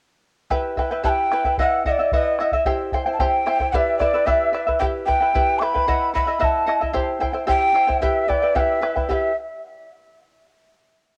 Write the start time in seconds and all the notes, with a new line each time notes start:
0.51 E4 G4 B4 E5 G5, bombo low
0.77 E4 B4 E5 G5, bombo low
0.91 E4 B4 G5
1.04 E4 G4 B4 E5 G5 A5, bombo low
1.09 G5
1.32 E4 B4 E5 G5, bombo rim
1.44 E4 B4 G5, bombo low
1.58 E4 B4 D#5 E5 F#5, bombo low
1.85 E4 D#5 E5 F#5, bombo low
1.91 D5
1.99 E4 D#5 E5
2.12 E4 B4 D#5 E5 F#5, bombo low
2.39 E4 D#5 E5 F#5, bombo rim
2.52 E4 D#5 E5, bombo low
2.65 E4 G4 C5 E5 G5, bombo low
2.92 E4 C5 E5 G5, bombo low
3.06 E4 C5 G5
3.13 A5
3.19 E4 G4 C5 E5 G5 A5, bombo low
3.25 G5
3.46 E4 C5 E5 G5, bombo rim
3.60 E4 C5 G5, bombo low
3.72 E4 G4 B4 D5 E5 F#5, bombo low
3.99 E4 B4 D5 E5, bombo rim, bombo low
4.14 E4 B4 E5
4.26 E4 G4 B4 D5 E5, bombo low
4.53 E4 B4 D5 E5, bombo rim
4.67 E4 B4 E5, bombo low
4.79 E4 G4 B4 E5 G5, bombo low
5.06 E4 B4 E5 G5, bombo low
5.21 E4 B4 G5
5.34 E4 G4 B4 E5 G5, bombo low
5.59 E4 B4 E5 G5 D6, bombo rim
5.63 B5
5.74 E4 B4 G5, bombo low
5.88 E4 B4 D#5 E5 F#5, bombo low
6.14 E4 D#5 E5 F#5 B5, bombo low
6.27 E4 D#5 E5
6.39 E4 B4 D#5 E5 F#5 B5, bombo low
6.44 A5
6.67 E4 D#5 E5 F#5, bombo rim
6.81 E4 D#5 E5, bombo low
6.93 E4 G4 C5 E5 G5, bombo low
7.20 E4 C5 E5 G5, bombo low
7.33 E4 C5 G5
7.47 E4 G4 C5 E5 G5, bombo low
7.74 E4 C5 E5 G5, bombo rim
7.87 E4 C5 G5, bombo low
8.02 E4 G4 B4 E5 G5, bombo low
8.28 E4 B4 D5 E5 G5, bombo low
8.42 E4 B4 G5
8.55 E4 G4 B4 E5 F#5 G5, bombo low
8.60 E5
8.82 E4 B4 E5 G5, bombo rim
8.96 E4 B4 G5, bombo low
9.09 E4 G4 B4 E5 F#5 G5, bombo low
9.13 E5